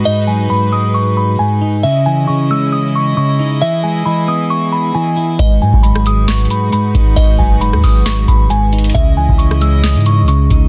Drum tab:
HH |--------------------------------|--------------------------------|--------------------------------|x-------x---x---xxxxx---x---x---|
CP |--------------------------------|--------------------------------|--------------------------------|----------------x---------------|
SD |--------------------------------|--------------------------------|--------------------------------|----------r-----o---------------|
BD |--------------------------------|--------------------------------|--------------------------------|o-----o---------------------o---|

HH |x-------x---o---x---x---x---xxxx|x-------x---x---xxxxx---x---x---|
CP |----------------x---------------|----------------x---------------|
SD |----------r-----o---------------|----------r-----o---------------|
BD |o---o-------o-------o-----------|o-----o---------------------o---|